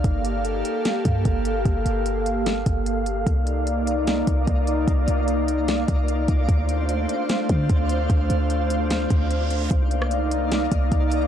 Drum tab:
HH |x-x-x-x-x-x-x-x-|x-x-x-x-x-x-x-x-|x-x-x-x-x-x-x-x-|x-x-x-x-x-x-x-x-|
SD |--------o-------|--------o-------|--------o-------|--------o-------|
BD |o---------o-o---|o---------o-----|o---------o-o---|o---------o---o-|

HH |x-x-x-x-x-x-x-x-|x-x-x-x-x-x-x-x-|x-x-x-x-x-x-x-x-|
SD |--------o-------|--------o-------|---r----o-------|
BD |o---------o-o---|o---------o-----|o---------o-o---|